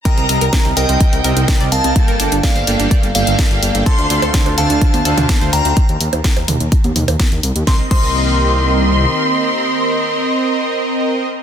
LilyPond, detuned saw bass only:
\new Staff \with { instrumentName = "Detuned saw bass" } { \clef bass \time 4/4 \key c \dorian \tempo 4 = 126 r16 c,16 c,16 c,16 r16 c,16 c,16 c,16 r16 c,16 c,16 c,16 r16 c,16 c,16 c,16 | r16 g,,16 g,,16 g,,16 r16 g,,16 g,,16 g,,16 r16 g,,16 g,,16 g,,16 r16 g,,16 g,,16 g,,16 | r16 d,16 d,16 d,16 r16 d,16 d,16 d,16 r16 d,16 d,16 d,16 r16 d,16 d,16 d,16 | r16 ees,16 ees,16 ees,16 r16 ees,16 ees,16 ees,16 r16 ees,16 ees,16 ees,16 r16 ees,16 c,16 ees,16 |
c,16 r16 c,2~ c,8 r4 | r1 | }